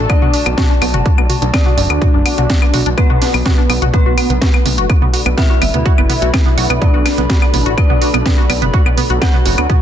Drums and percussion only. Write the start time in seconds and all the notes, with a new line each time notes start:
0.10 kick, closed hi-hat, claves
0.22 mid tom
0.34 open hi-hat
0.46 closed hi-hat, claves
0.58 kick, snare, closed hi-hat, mid tom
0.82 open hi-hat, claves
0.94 closed hi-hat, mid tom
1.06 kick, closed hi-hat
1.18 claves
1.30 open hi-hat, mid tom
1.42 closed hi-hat
1.54 kick, snare, closed hi-hat, claves
1.66 mid tom
1.78 open hi-hat
1.90 closed hi-hat, claves
2.02 kick, closed hi-hat, mid tom
2.26 open hi-hat, claves
2.38 closed hi-hat, mid tom
2.50 kick, snare, closed hi-hat
2.62 claves
2.74 open hi-hat, mid tom
2.86 closed hi-hat
2.98 kick, closed hi-hat, claves
3.10 mid tom
3.22 snare, open hi-hat
3.34 open hi-hat, claves
3.46 kick, snare, closed hi-hat, mid tom
3.70 open hi-hat, claves
3.82 closed hi-hat, mid tom
3.94 kick, closed hi-hat, mid tom
4.18 open hi-hat, claves
4.30 closed hi-hat, mid tom
4.42 kick, snare, closed hi-hat
4.54 claves
4.66 open hi-hat, mid tom
4.78 closed hi-hat
4.90 kick, closed hi-hat, claves
5.02 mid tom
5.14 open hi-hat
5.26 closed hi-hat, claves
5.38 kick, snare, closed hi-hat, mid tom
5.62 open hi-hat, claves
5.74 closed hi-hat, mid tom
5.86 kick, closed hi-hat
5.98 claves
6.10 open hi-hat, mid tom
6.22 closed hi-hat
6.34 kick, snare, closed hi-hat, claves
6.46 mid tom
6.58 open hi-hat
6.70 closed hi-hat, claves
6.82 kick, closed hi-hat, mid tom
7.06 snare, open hi-hat, claves
7.18 closed hi-hat, mid tom
7.30 kick, snare, closed hi-hat
7.42 claves
7.54 open hi-hat, mid tom
7.66 closed hi-hat
7.78 kick, closed hi-hat, claves
7.90 mid tom
8.02 open hi-hat
8.14 closed hi-hat, claves
8.26 kick, snare, closed hi-hat, mid tom
8.50 open hi-hat, claves
8.62 closed hi-hat, mid tom
8.74 kick, closed hi-hat
8.86 claves
8.98 open hi-hat, mid tom
9.10 closed hi-hat
9.22 kick, snare, closed hi-hat, claves
9.34 mid tom
9.46 open hi-hat
9.58 closed hi-hat, claves
9.70 kick, closed hi-hat, mid tom